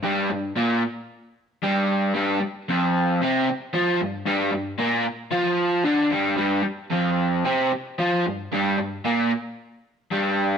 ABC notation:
X:1
M:4/4
L:1/8
Q:1/4=113
K:Clyd
V:1 name="Overdriven electric guitar" clef=bass
[G,,G,] G,, [_B,,_B,] z3 [G,,G,]2 | [G,,G,] z [=F,,=F,]2 [C,C] z [F,=F] G,, | [G,,G,] G,, [_B,,_B,] z [=F,=F]2 [D,D] [G,,G,] | [G,,G,] z [=F,,=F,]2 [C,C] z [F,=F] G,, |
[G,,G,] G,, [_B,,_B,] z3 [G,,G,]2 |]